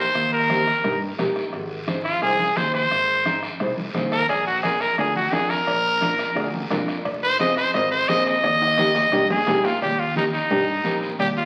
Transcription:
0.00 C5
0.15 D#2, bombo low, bombo rim, long guiro
0.33 A#4
0.49 D#4 G4 C5, bombo rim, high conga, short guiro
0.67 bombo rim, short guiro
0.84 G2 D#4 G4 A#4, bombo low, bombo rim, low conga, long guiro
1.18 A#1 D#4 G4 A#4, bombo low, bombo rim, high conga, low conga, short guiro
1.36 bombo rim, short guiro
1.53 G#1, bombo low, bombo rim, long guiro
1.87 D#4 G#4 C5, bombo rim, high conga, short guiro
2.04 F4, bombo rim, short guiro
2.21 C2 D#4 G#4 C5, bombo low, bombo rim, long guiro
2.39 high conga
2.56 D#2 D#4 G#4 C5, bombo low, bombo rim, high conga, short guiro
2.74 C5, bombo rim, short guiro
2.91 G#1, bombo low, bombo rim, long guiro
3.26 D#4 G#4 C5, bombo rim, high conga, short guiro
3.43 bombo rim, short guiro
3.60 C2 D#4 G#4 C5, bombo low, bombo rim, low conga, long guiro
3.77 high conga
3.94 D#2 D#4 G#4 C5, bombo rim, high conga, low conga, short guiro
4.12 A#4, bombo rim, short guiro
4.29 A#1 G#4, bombo low, bombo rim, cowbell, long guiro
4.47 F#4
4.63 D4 F4 G#4 A#4, bombo rim, cowbell, high conga, short guiro
4.80 A#4, bombo rim, short guiro
4.98 D2 D4 F4 G#4 A#4, bombo low, bombo rim, cowbell, long guiro
5.16 F#4, high conga
5.32 F2 D4 F4 G#4 A#4, bombo low, bombo rim, cowbell, high conga, short guiro
5.50 A#4, bombo rim, short guiro
5.67 A#1, bombo low, bombo rim, cowbell
6.01 D4 F4 A#4, bombo rim, cowbell, high conga, short guiro
6.19 bombo rim, short guiro
6.35 D2 D4 F4 G#4, bombo low, bombo rim, cowbell, long guiro
6.54 high conga
6.70 F2 D4 F4 A#4, bombo low, bombo rim, cowbell, high conga, low conga, low timbale, short guiro
6.88 bombo rim, short guiro
7.05 F1, bombo low, bombo rim, cowbell, long guiro
7.23 C5
7.39 C4 F4 G#4 D#5, bombo rim, cowbell, high conga, short guiro
7.57 C5, bombo rim, short guiro
7.74 G#1 C4 F4 A#4 D#5, bombo low, bombo rim, cowbell, long guiro
7.91 C5
8.08 A#1 C4 F4 G#4 D#5, bombo low, bombo rim, cowbell, high conga, low timbale, short guiro
8.26 D#5, bombo rim, short guiro
8.43 D#2, bombo low, bombo rim, cowbell, high timbale, long guiro
8.61 high timbale
8.78 A#3 D#4 G4, bombo rim, cowbell, high conga, high timbale, short guiro
8.95 bombo rim, low timbale, short guiro
9.12 G2 A#3 D#4 G4, bombo low, bombo rim, cowbell, low conga, long guiro
9.30 G#4, high conga, low timbale
9.47 A#1 A#3 D#4 G4, bombo low, bombo rim, cowbell, high conga, low conga, low timbale, short guiro
9.64 F4, bombo rim, low timbale, short guiro
9.82 D#2 G4, cowbell, high conga, low conga, long guiro
9.99 F4
10.16 A#3 D#4 G4, high conga, short guiro
10.33 D#4, short guiro
10.50 G2 A#3 D#4 G4, cowbell, high conga, low conga, long guiro
10.84 A#1 A#3 D#4 G4, high conga, short guiro
11.02 short guiro
11.19 D#2 G4, cowbell, high conga, low conga, long guiro
11.37 F4

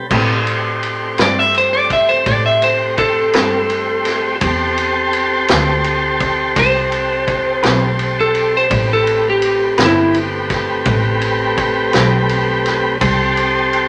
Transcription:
0.09 A2 A3 C4 G4 C5, kick, crash
0.13 G4 B4
0.47 ride
0.83 ride
1.18 G2 A3 C4 G4 B4, snare, ride
1.22 D5
1.39 E5
1.54 C5, ride
1.73 D5
1.90 E5, kick, ride
2.09 C5
2.26 A2 D5, kick, ride
2.46 E5
2.62 C5, ride
2.98 A4, kick, ride
3.33 G2 A3 C4 G4 B4, snare, ride
3.70 ride
4.05 snare, ride
4.40 E2 C4 G4 A4 C5, kick, ride
4.78 ride
5.13 ride
5.48 D2 A3 C4 G4 B4, snare, ride
5.84 ride
6.20 kick, ride
6.56 C2 C5, kick, ride
6.92 ride
7.28 kick, ride
7.63 B1 A3 C4 G4 B4, snare, ride
7.99 ride
8.21 A4
8.35 ride
8.57 C5
8.68 A1 A3 C4 G4 B4, kick, ride
8.93 A4
9.07 ride
9.30 G4
9.42 ride
9.78 G1 A3 C4 G4 B4, snare, ride
9.85 E4
10.14 ride
10.50 kick, snare, ride
10.85 A1, kick, ride
11.21 ride
11.57 kick, ride
11.93 B1 A3 C4 G4 B4, snare, ride
12.29 ride
12.66 snare, ride
13.01 C2 C4 G4 A4 C5, kick, ride
13.37 ride
13.73 ride

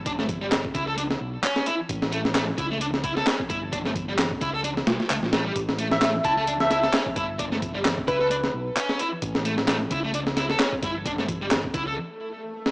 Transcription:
Already playing: G1
0.06 D4, kick, closed hi-hat
0.19 A3, snare
0.29 kick, closed hi-hat
0.42 G3
0.52 snare, clap, closed hi-hat
0.65 kick
0.75 C#2 E4, kick, closed hi-hat
0.88 A4
0.98 D4, closed hi-hat
1.11 snare
1.21 B1
1.43 C#4, clap, closed hi-hat
1.56 snare
1.66 E4, closed hi-hat
1.89 A1, kick, closed hi-hat
2.02 snare
2.12 A3, closed hi-hat
2.25 snare
2.35 A3, snare, clap, closed hi-hat
2.58 C#2 E4, kick, closed hi-hat
2.71 A3
2.81 D4, closed hi-hat
2.94 snare
3.04 E4, kick, closed hi-hat
3.17 A4, snare
3.27 C#4, snare, clap, open hi-hat
3.40 kick
3.50 G1 E4, kick, closed hi-hat
3.73 D4, kick, closed hi-hat
3.85 A3, snare
3.95 kick, closed hi-hat
4.08 G3
4.19 snare, clap, closed hi-hat
4.31 kick
4.41 C#2 E4, kick, closed hi-hat
4.54 A4
4.64 D4, closed hi-hat
4.77 snare
4.87 B1, snare, closed hi-hat
5.00 muted picked electric bass stroke, snare
5.10 C#2 A3, clap, closed hi-hat
5.23 A1, snare
5.33 A3, snare, closed hi-hat
5.46 G3
5.56 A1, kick, closed hi-hat
5.69 snare
5.79 A3, closed hi-hat
5.91 E5, snare
6.02 A3, snare, clap, closed hi-hat
6.24 C#2 E4 A5, kick, closed hi-hat
6.38 A3 A5
6.47 D4, closed hi-hat
6.60 E5, snare
6.71 E4 E5, snare, closed hi-hat
6.83 A4, snare
6.93 C#4, snare, clap, open hi-hat
7.06 kick
7.16 G1 E4, kick, closed hi-hat
7.39 D4, kick, closed hi-hat
7.52 A3, snare
7.62 kick, closed hi-hat
7.75 G3
7.85 snare, clap, closed hi-hat
7.98 kick
8.08 C#2 E4 B4, kick, closed hi-hat
8.21 A4 B4
8.31 D4, closed hi-hat
8.44 snare
8.54 B1
8.77 C#4, clap, closed hi-hat
8.89 snare
8.99 E4, closed hi-hat
9.22 A1, kick, closed hi-hat
9.35 snare
9.45 A3, closed hi-hat
9.58 snare
9.68 A3, snare, clap, closed hi-hat
9.91 C#2 E4, kick, closed hi-hat
10.04 A3
10.14 D4, closed hi-hat
10.27 snare
10.37 E4, snare, closed hi-hat
10.50 A4, snare
10.60 C#4, snare, clap, open hi-hat
10.73 kick
10.83 G1 E4, kick, closed hi-hat
11.06 D4, kick, closed hi-hat
11.18 A3, snare
11.28 kick, closed hi-hat
11.41 G3
11.51 snare, clap, closed hi-hat
11.64 kick
11.74 C#2 E4, kick, closed hi-hat
11.87 A4
11.97 swell
12.66 snare

